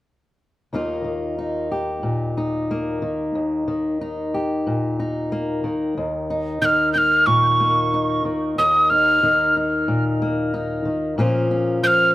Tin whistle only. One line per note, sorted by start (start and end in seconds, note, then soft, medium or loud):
6.62 6.92 F6 medium
6.62 6.66 G6 medium
6.93 6.99 G6 medium
6.98 7.28 F6 medium
7.26 8.25 C#6 medium
8.58 8.91 D#6 medium
8.90 9.55 F6 medium
11.84 12.14 F6 medium
11.84 11.88 G6 medium